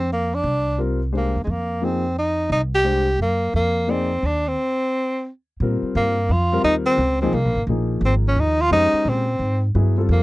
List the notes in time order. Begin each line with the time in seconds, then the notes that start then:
Already playing: F2 C4
0.13 A#3
0.34 D4
0.44 C2
0.78 G3 C4 F4 A#4
1.13 G#3 D4 G4 C5
1.17 A#3
1.35 E2
1.44 F2 G#3
1.51 A#3
1.82 F3 A#3 C4 D#4 G#4
2.19 D#4
2.50 C2 D#4
2.75 G4
2.84 G#3 D4 G4 C5
3.19 F#2 A#3
3.54 F2 A#3
3.88 A#3 C4 D#4 G#4 D5
4.23 D#2 D4
4.48 C4
5.60 A#2 G3 C4 F4 A#4
5.82 muted upright bass stroke
5.95 G2 A#3
6.29 F2 F4
6.52 G3 C4 F4 A#4
6.64 D#2 D#4
6.86 C4
6.98 C#2
7.21 F3 A#3 C4 D#4 G#4
7.33 C2 A#3
7.45 A#1
7.55 G#1
7.67 A#1 F3 A#3 D#4 G#4
8.01 G#1
8.05 C4
8.28 C#4
8.36 D#2 D#4
8.61 F4
8.71 F2 G#3 C#4 D#4 G4 C5
8.93 muted upright bass stroke
9.05 A#2 C4
9.39 G#2
9.75 G2 F#3 B3 E4 G#4
9.98 G3 C4 F4 A4
10.09 F2 A#3